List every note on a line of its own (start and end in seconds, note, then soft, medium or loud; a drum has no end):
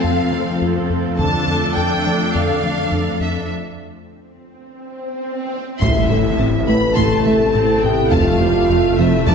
0.00 3.46 F2 medium
0.00 1.18 A3 medium
0.00 1.19 C4 soft
0.00 1.20 C4 soft
0.00 3.50 F4 medium
0.00 1.15 A4 soft
0.00 1.19 A4 medium
0.00 0.61 F5 medium
0.04 0.21 F2 medium
0.04 0.22 F3 medium
0.32 0.50 F3 medium
0.32 0.50 C4 medium
0.62 0.79 F2 soft
0.62 0.79 F4 medium
0.90 1.08 F2 medium
1.19 1.36 F2 medium
1.19 1.37 D3 medium
1.19 3.46 A3 medium
1.19 3.50 D4 medium
1.19 3.51 D4 medium
1.19 3.46 A4 medium
1.19 3.47 A4 medium
1.19 1.73 A5 medium
1.19 taiko soft
1.48 1.65 F2 medium
1.48 1.66 D4 soft
1.77 1.95 F2 soft
1.77 1.95 F3 medium
1.77 2.35 G5 medium
2.06 2.24 F3 medium
2.06 2.23 A3 soft
2.35 2.52 F2 medium
2.35 2.52 D3 medium
2.35 3.21 F5 medium
2.64 2.81 F3 medium
2.64 2.82 A3 soft
2.92 3.09 F2 soft
2.92 3.10 D4 soft
3.20 3.38 F2 soft
3.20 3.49 E5 soft
3.51 swell soft
5.80 5.89 A1 soft
5.80 8.13 A1 medium
5.80 5.89 A2 medium
5.80 5.99 A2 medium
5.80 9.35 C3 soft
5.80 9.35 C3 medium
5.80 5.99 A3 medium
5.80 9.35 A3 soft
5.80 9.35 A3 medium
5.80 6.63 E4 medium
5.80 8.09 E4 medium
5.80 9.35 A4 medium
5.80 6.64 E5 medium
5.80 6.07 C6 medium
5.80 taiko medium
5.80 impact medium
6.09 6.18 A1 soft
6.09 6.27 A2 medium
6.09 6.19 A2 soft
6.09 6.28 A4 soft
6.09 6.17 E5 soft
6.37 6.46 A1 soft
6.37 6.47 A2 soft
6.37 6.57 A2 soft
6.37 6.57 C4 medium
6.37 6.45 A5 soft
6.67 6.75 A1 soft
6.67 6.76 A2 soft
6.67 6.86 A3 medium
6.67 6.85 E4 medium
6.67 6.96 B4 medium
6.67 6.75 E5 soft
6.67 6.96 B5 medium
6.94 7.05 A1 medium
6.94 7.05 A2 medium
6.94 7.14 A2 medium
6.94 7.14 A3 medium
6.94 7.51 A3 medium
6.94 7.82 A4 medium
6.94 7.81 A5 soft
6.94 7.23 C6 medium
6.94 taiko medium
7.24 7.34 A1 soft
7.24 7.33 A2 soft
7.24 7.44 A3 medium
7.24 7.43 E4 soft
7.24 7.32 E5 soft
7.53 7.63 A1 soft
7.53 7.62 A2 soft
7.53 7.72 A2 soft
7.53 7.83 C4 medium
7.53 7.72 A4 medium
7.53 7.61 A5 soft
7.82 8.01 A2 medium
7.82 8.12 B3 medium
7.82 8.12 G4 medium
7.82 8.11 G5 medium
8.11 9.35 F1 medium
8.11 8.20 F1 medium
8.11 8.20 F2 medium
8.11 8.30 F2 medium
8.11 8.30 F3 medium
8.11 8.41 A3 medium
8.11 8.99 F4 medium
8.11 9.35 F4 medium
8.11 8.98 F5 medium
8.11 8.39 A5 medium
8.11 taiko medium
8.41 8.49 F1 soft
8.41 8.58 F2 medium
8.41 8.49 F2 soft
8.41 8.70 G3 medium
8.41 8.58 F4 medium
8.41 8.49 C5 soft
8.69 8.77 F1 soft
8.69 8.87 F2 medium
8.69 8.78 F2 soft
8.69 8.87 A3 medium
8.69 9.28 A3 medium
8.69 8.78 F5 soft
8.98 9.07 F1 soft
8.98 9.07 F2 soft
8.98 9.16 F3 medium
8.98 9.16 C4 medium
8.98 9.27 E4 medium
8.98 9.06 C5 soft
8.98 9.27 E5 medium
9.27 9.35 F1 medium
9.27 9.35 F2 medium
9.27 9.35 F3 medium
9.27 9.35 B3 medium
9.27 9.35 D4 medium
9.27 9.35 D5 medium
9.27 9.35 A5 medium
9.27 taiko medium